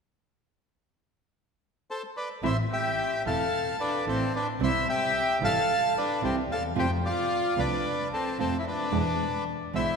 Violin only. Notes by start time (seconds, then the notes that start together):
2.43 E4
2.71 G4
3.27 A4
3.81 D4
4.09 C4
4.36 D4
4.63 E4
4.89 G4
5.43 A4
5.98 D4
6.25 C4
6.52 A4
6.79 G4
7.07 F4
7.59 D4
8.13 C4
8.39 C4
8.58 E4
8.66 D4
9.75 E4